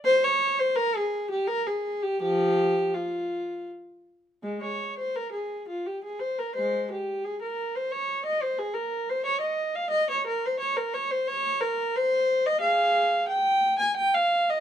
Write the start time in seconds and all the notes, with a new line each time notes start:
0.05 C5
0.24 C#5
0.59 C5
0.76 A#4
0.96 G#4
1.31 G4
1.47 A#4
1.66 G#4
2.02 G4
2.21 F3 G4
2.94 F4
4.43 G#3
4.62 C#5
4.98 C5
5.16 A#4
5.32 G#4
5.68 F4
5.86 G4
6.04 G#4
6.19 C5
6.38 A#4
6.55 G#3 C5
6.91 G4
7.24 G#4
7.42 A#4
7.76 C5
7.91 C#5
8.26 D#5
8.42 C5
8.58 G#4
8.74 A#4
9.09 C5
9.26 C#5
9.41 D#5
9.75 F5
9.90 D#5
10.10 C#5
10.27 A#4
10.46 C5
10.60 C#5
10.76 A#4
10.93 C#5
11.11 C5
11.27 C#5
11.60 A#4
11.96 C5
12.46 D#5
12.60 G#4 F5
13.28 G5
13.79 G#5
13.96 G5
14.14 F5
14.49 D#5